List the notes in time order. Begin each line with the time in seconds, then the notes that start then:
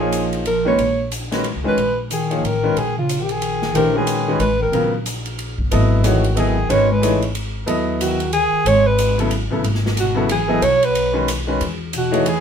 Already playing: A#1 F3 G#4
0.00 F3 A#3 D#4 G#4 C#5
0.12 hi-hat pedal, ride
0.33 ride
0.45 F3 A#4, ride
0.65 D#3 G#3 A#3 C#4 F#4 B4 C#5
0.78 A#1, ride
1.12 hi-hat pedal, ride
1.31 D#3 G#3 C#4 F#4 B4, snare, ride
1.44 ride
1.56 C#2
1.64 F2 D#3 G#3 C#4 F#4 B4
1.68 B4
1.77 A#1, ride
2.11 D#3 G#4, hi-hat pedal, ride
2.30 F3 A#3 D#4 G#4 C#5, ride
2.43 A1 D#3 A#4, ride
2.63 D#3 G#3 C#4 F#4 B4
2.75 A#1 D#3 G#4, ride
2.97 C#3 F4
3.09 hi-hat pedal, ride
3.20 D#3 G4
3.29 D#3 G#4, ride
3.42 ride
3.62 snare
3.73 A#1 D#3 E3 A3 D4 G4 A#4 C5, ride
3.94 D#3 G#3 C#4 F#4 G#4 B4
4.07 hi-hat pedal, ride
4.27 D#3 G#3 C#4 F#4 B4
4.39 A1 G#3 B4, ride
4.60 D#3 A#4
4.72 A#1 C#3 F#3 B3 F4 A#4, ride
5.06 hi-hat pedal, ride
5.25 ride
5.39 ride
5.58 G1, kick
5.71 G#1 F#3 B3 E4 A4 D#5, ride
6.03 D#3 E3 A3 D#4 F#4 G#4 C#5, hi-hat pedal, ride
6.24 ride
6.35 D#3 F#3 B3 E4 A4 D#5, ride
6.40 G#4
6.69 G#1 D#3 G#3 C#4 F#4 B4 C#5, ride
6.91 G#3 B4
7.02 E3 A3 D#4 G#4 C#5, hi-hat pedal, ride
7.22 ride
7.35 ride
7.66 D#2 F#3 B3 E4 A4 D#5, ride
8.00 D#3 F#4, hi-hat pedal, ride
8.20 ride
8.33 D#3 G#4, ride
8.53 muted upright bass stroke
8.65 G#1 G#3 C#5, ride
8.86 G#3 B4
8.98 hi-hat pedal, ride
9.18 C#3 F#3 B3 E4 A4, ride
9.31 ride
9.50 A1 C#3 F#3 B3 E4 A4
9.62 G#1, ride
9.75 snare
9.86 snare
9.97 B2 F#4, hi-hat pedal, ride
10.15 C#3 F#3 B3 E4 A4
10.29 E3 G#4, ride
10.48 F#3 B3 E4 A4 D#5
10.61 B1 F#3 C#5, ride
10.82 F#3 B4, ride
10.95 ride
11.13 D#3 G#3 C#4 F#4 B4
11.28 hi-hat pedal, ride
11.47 D#3 G#3 C#4 F#4 B4
11.60 E2, ride
11.93 B2, hi-hat pedal, ride
11.98 F#4
12.11 E3 A3 D#4 G#4 C#5, ride
12.26 E3 G#4, ride